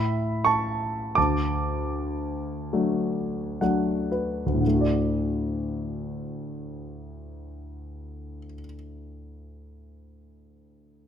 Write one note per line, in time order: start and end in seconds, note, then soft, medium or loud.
0.00 1.13 A2 soft
0.00 0.42 E5 soft
0.00 0.47 B5 medium
0.45 1.14 A5 soft
0.45 1.19 C#6 medium
1.15 4.45 D2 soft
1.15 3.58 A5 soft
1.15 3.57 D6 medium
2.73 3.60 F#3 soft
2.73 3.60 A3 soft
2.73 3.60 D4 soft
3.61 4.61 F#3 soft
3.61 4.61 A3 soft
3.61 4.61 D4 soft
3.61 4.08 F#5 soft
4.12 4.60 B4 soft
4.46 8.38 D2 soft
4.53 8.45 A2 soft
4.61 8.52 D3 soft
4.67 8.59 A3 soft
4.74 8.66 F#4 soft
4.81 8.73 D5 soft